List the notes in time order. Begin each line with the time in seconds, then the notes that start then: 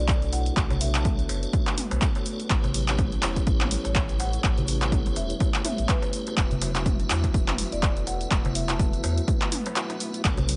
Already playing: B1 A3 D4 F#4 A4 B4 C#5
0.08 A4, kick, clap, closed hi-hat, darbuka tek, shaker
0.22 closed hi-hat, shaker
0.32 E4 F#5, open hi-hat, darbuka tek, shaker
0.46 closed hi-hat, shaker
0.57 B1 A3 D4 F#4 A4 C#5, kick, clap, closed hi-hat, shaker
0.70 F#4, closed hi-hat, darbuka tek, darbuka dum, shaker
0.81 B3 E5, open hi-hat, shaker
0.95 A5, clap, closed hi-hat, darbuka tek, shaker
1.05 A4, kick, closed hi-hat, mid tom, shaker
1.19 B3, closed hi-hat, shaker
1.29 F#1, open hi-hat, darbuka ka, darbuka tek, shaker
1.43 closed hi-hat, shaker
1.53 A3, kick, closed hi-hat, darbuka tek, shaker
1.67 clap, closed hi-hat, shaker
1.77 B3, open hi-hat, mid tom, shaker
1.91 B1 B3, closed hi-hat, darbuka tek, shaker
2.02 D4 F#4 A4 C#5, kick, clap, closed hi-hat, shaker
2.15 D4, closed hi-hat, darbuka ka, darbuka tek, shaker
2.26 A3, open hi-hat, shaker
2.40 F#4, closed hi-hat, shaker
2.50 A1 G3 C#4 E4 G4 A4 B4 C#5, kick, clap, closed hi-hat, shaker
2.64 B3, closed hi-hat, darbuka tek, darbuka dum, shaker
2.74 F#3, open hi-hat, shaker
2.88 C#4, clap, closed hi-hat, shaker
2.98 A3, kick, closed hi-hat, mid tom, darbuka tek, shaker
3.12 C#4, closed hi-hat, shaker
3.22 E1 E4, clap, open hi-hat, darbuka ka, darbuka tek, shaker
3.36 B3, kick, closed hi-hat, shaker
3.47 A1 C#4, kick, closed hi-hat, shaker
3.61 clap, closed hi-hat, mid tom, darbuka tek, shaker
3.71 E4 G4 B4 C#5, open hi-hat, shaker
3.85 A1 C#5, closed hi-hat, darbuka tek, shaker
3.95 A4, kick, clap, closed hi-hat, shaker
4.09 closed hi-hat, shaker
4.19 E4 F#5, open hi-hat, darbuka tek, shaker
4.33 closed hi-hat, shaker
4.43 A1 A3 E4 G4 B4 C#5, kick, clap, closed hi-hat, darbuka tek, shaker
4.57 F#4, closed hi-hat, darbuka dum, shaker
4.68 B3, open hi-hat, shaker
4.82 clap, closed hi-hat, darbuka tek, shaker
4.92 A4, kick, closed hi-hat, mid tom, shaker
5.05 B3, closed hi-hat, darbuka tek, shaker
5.16 E1 E5, open hi-hat, darbuka ka, shaker
5.30 closed hi-hat, shaker
5.40 A3, kick, closed hi-hat, darbuka tek, shaker
5.54 clap, closed hi-hat, shaker
5.65 B3 E4 G4 B4 C#5 E5, open hi-hat, mid tom, darbuka tek, shaker
5.78 A1 B3 E5, closed hi-hat, shaker
5.89 B4, kick, clap, closed hi-hat, shaker
6.02 C#4, closed hi-hat, darbuka ka, darbuka tek, shaker
6.13 A3, open hi-hat, shaker
6.27 F#4, closed hi-hat, darbuka tek, shaker
6.37 E1 F#3 B3 E4 F#4 B4 E5, kick, clap, closed hi-hat, shaker
6.51 B3, closed hi-hat, darbuka dum, shaker
6.61 F#3, open hi-hat, darbuka tek, shaker
6.75 D4, clap, closed hi-hat, shaker
6.86 A3, kick, closed hi-hat, mid tom, darbuka tek, shaker
6.99 D4, closed hi-hat, shaker
7.10 E2 E4, clap, open hi-hat, darbuka ka, shaker
7.23 B3, kick, closed hi-hat, darbuka tek, shaker
7.34 E1 D4, kick, closed hi-hat, shaker
7.48 clap, closed hi-hat, mid tom, darbuka tek, shaker
7.58 E4 F#4 B4 E5, open hi-hat, shaker
7.72 E1 D5, closed hi-hat, shaker
7.82 A4, kick, clap, closed hi-hat, darbuka tek, shaker
7.97 closed hi-hat, shaker
8.07 E4 F#5, open hi-hat, darbuka tek, shaker
8.21 closed hi-hat, shaker
8.31 E1 A3 E4 F#4 B4 E5, kick, clap, closed hi-hat, shaker
8.45 F#4, closed hi-hat, darbuka tek, darbuka dum, shaker
8.55 B3 E5, open hi-hat, shaker
8.68 A5, clap, closed hi-hat, darbuka tek, shaker
8.79 A4, kick, closed hi-hat, mid tom, shaker
8.93 B3, closed hi-hat, shaker
9.04 E2, open hi-hat, darbuka ka, darbuka tek, shaker
9.18 closed hi-hat, shaker
9.28 A3, kick, closed hi-hat, swell, darbuka tek, shaker
9.41 clap, closed hi-hat, shaker
9.52 B3, open hi-hat, mid tom, shaker
9.66 B3, closed hi-hat, darbuka tek, shaker
9.76 E4 F#4 B4 E5, clap, closed hi-hat, shaker
9.90 D4, closed hi-hat, darbuka ka, darbuka tek, shaker
10.00 A3, open hi-hat, shaker
10.14 F#4, closed hi-hat, shaker
10.24 B1 A3 B3 D4 F#4 A4 C#5, kick, clap, closed hi-hat, shaker
10.37 B3, closed hi-hat, muted conga, darbuka tek, darbuka dum, shaker
10.49 F#3, open hi-hat, shaker